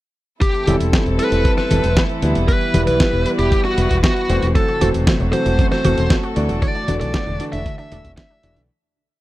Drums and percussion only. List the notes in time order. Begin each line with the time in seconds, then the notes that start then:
0.42 kick, closed hi-hat
0.54 closed hi-hat
0.67 closed hi-hat, high conga
0.80 closed hi-hat
0.93 kick, snare, closed hi-hat
1.06 closed hi-hat
1.19 closed hi-hat
1.32 closed hi-hat
1.45 kick, closed hi-hat
1.58 snare, closed hi-hat
1.71 closed hi-hat, high conga
1.84 closed hi-hat
1.97 kick, snare, closed hi-hat
2.10 closed hi-hat
2.22 closed hi-hat
2.35 closed hi-hat
2.48 kick, closed hi-hat
2.61 closed hi-hat
2.74 closed hi-hat, high conga
2.87 closed hi-hat
3.00 kick, snare, closed hi-hat
3.13 closed hi-hat
3.26 closed hi-hat
3.39 closed hi-hat
3.52 kick, closed hi-hat
3.65 closed hi-hat
3.78 closed hi-hat
3.91 kick, closed hi-hat
4.04 kick, snare, closed hi-hat
4.17 closed hi-hat
4.30 closed hi-hat
4.42 closed hi-hat
4.55 kick, closed hi-hat
4.68 closed hi-hat
4.81 closed hi-hat, high conga
4.94 closed hi-hat
5.07 kick, snare, closed hi-hat
5.20 closed hi-hat
5.33 closed hi-hat
5.46 closed hi-hat
5.59 kick, closed hi-hat
5.72 snare, closed hi-hat
5.85 closed hi-hat, high conga
5.98 closed hi-hat
6.10 kick, snare, closed hi-hat
6.23 closed hi-hat
6.36 closed hi-hat
6.49 closed hi-hat
6.62 kick, closed hi-hat
6.75 closed hi-hat
6.88 closed hi-hat, high conga
7.01 closed hi-hat
7.14 kick, snare, closed hi-hat
7.27 closed hi-hat
7.40 closed hi-hat
7.53 closed hi-hat
7.66 kick, closed hi-hat
7.79 closed hi-hat
7.92 closed hi-hat
8.05 kick, closed hi-hat
8.17 kick, snare, closed hi-hat
8.30 closed hi-hat
8.43 closed hi-hat
8.56 closed hi-hat